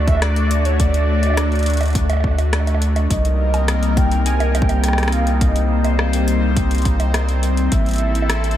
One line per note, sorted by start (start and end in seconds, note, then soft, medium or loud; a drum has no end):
0.00 3.08 D2 medium
0.00 3.07 A3 medium
0.00 3.07 D4 medium
0.00 3.07 F#4 medium
0.08 0.21 E5 loud
0.08 kick loud
0.08 closed hi-hat soft
0.08 high bongo soft
0.10 high bongo soft
0.12 high bongo soft
0.15 high bongo soft
0.17 high bongo soft
0.20 0.67 D5 loud
0.20 cross-stick loud
0.20 closed hi-hat medium
0.20 high bongo soft
0.36 closed hi-hat soft
0.51 closed hi-hat medium
0.65 0.81 C#5 medium
0.65 closed hi-hat soft
0.80 2.53 D5 loud
0.80 kick loud
0.80 closed hi-hat medium
0.94 closed hi-hat soft
1.23 closed hi-hat soft
1.23 high bongo soft
1.27 high bongo soft
1.30 high bongo soft
1.34 cross-stick loud
1.34 closed hi-hat loud
1.34 high bongo soft
1.52 closed hi-hat soft
1.55 closed hi-hat soft
1.59 closed hi-hat soft
1.63 closed hi-hat soft
1.66 closed hi-hat medium
1.70 closed hi-hat soft
1.74 closed hi-hat soft
1.77 closed hi-hat soft
1.81 closed hi-hat soft
1.81 high bongo medium
1.83 closed hi-hat soft
1.86 closed hi-hat soft
1.88 closed hi-hat soft
1.90 closed hi-hat soft
1.93 kick loud
1.93 closed hi-hat soft
1.95 closed hi-hat medium
2.10 closed hi-hat soft
2.10 high bongo medium
2.13 high bongo medium
2.17 high bongo soft
2.20 kick medium
2.20 high bongo soft
2.24 high bongo soft
2.28 high bongo soft
2.31 high bongo soft
2.35 closed hi-hat soft
2.35 high bongo soft
2.38 high bongo medium
2.53 cross-stick loud
2.53 closed hi-hat medium
2.53 high bongo soft
2.60 high bongo soft
2.67 closed hi-hat soft
2.67 high bongo soft
2.74 high bongo medium
2.82 closed hi-hat medium
2.96 closed hi-hat soft
2.96 high bongo medium
3.10 7.69 C2 medium
3.10 7.68 G3 medium
3.10 7.68 A#3 medium
3.10 8.57 C4 medium
3.10 7.68 D#4 medium
3.10 5.39 A#4 medium
3.10 3.99 D#5 loud
3.10 kick loud
3.10 closed hi-hat loud
3.25 closed hi-hat soft
3.54 closed hi-hat soft
3.54 high bongo medium
3.68 cross-stick loud
3.68 closed hi-hat loud
3.83 closed hi-hat soft
3.97 4.25 G5 loud
3.97 kick loud
3.97 closed hi-hat medium
4.12 closed hi-hat soft
4.26 4.53 G#5 loud
4.26 closed hi-hat loud
4.40 closed hi-hat soft
4.40 high bongo medium
4.55 5.14 G5 loud
4.55 closed hi-hat medium
4.55 high bongo medium
4.62 kick loud
4.69 closed hi-hat soft
4.69 high bongo medium
4.84 cross-stick medium
4.84 closed hi-hat loud
4.88 cross-stick medium
4.93 cross-stick medium
4.98 cross-stick medium
4.98 closed hi-hat soft
5.03 cross-stick medium
5.03 closed hi-hat soft
5.08 cross-stick loud
5.08 closed hi-hat soft
5.12 5.43 F5 loud
5.12 closed hi-hat medium
5.27 closed hi-hat soft
5.41 7.70 C5 medium
5.41 5.99 D#5 medium
5.41 kick loud
5.41 closed hi-hat medium
5.56 closed hi-hat soft
5.84 closed hi-hat soft
5.84 high bongo medium
5.99 cross-stick loud
6.13 closed hi-hat loud
6.28 closed hi-hat medium
6.57 kick loud
6.57 closed hi-hat loud
6.71 closed hi-hat soft
6.75 closed hi-hat soft
6.78 closed hi-hat soft
6.82 kick medium
6.82 closed hi-hat soft
6.85 closed hi-hat medium
7.00 closed hi-hat soft
7.00 high bongo medium
7.14 cross-stick loud
7.14 closed hi-hat loud
7.14 high bongo medium
7.29 closed hi-hat soft
7.43 closed hi-hat medium
7.57 closed hi-hat soft
7.72 8.57 A1 medium
7.72 8.57 E4 medium
7.72 8.57 A4 medium
7.72 8.57 E5 loud
7.72 kick loud
7.72 closed hi-hat loud
7.86 closed hi-hat soft
7.89 closed hi-hat soft
7.91 closed hi-hat soft
7.93 closed hi-hat soft
7.96 closed hi-hat soft
7.98 closed hi-hat soft
8.15 closed hi-hat soft
8.22 high bongo medium
8.30 cross-stick loud
8.30 closed hi-hat loud
8.44 closed hi-hat soft
8.51 closed hi-hat soft